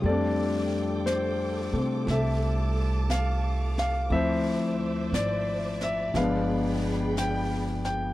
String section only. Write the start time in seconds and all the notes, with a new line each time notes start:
Already playing: F4
0.03 A4 G5 D6
2.10 A5
4.10 C5 D5 E5
6.12 G#4 G5 B5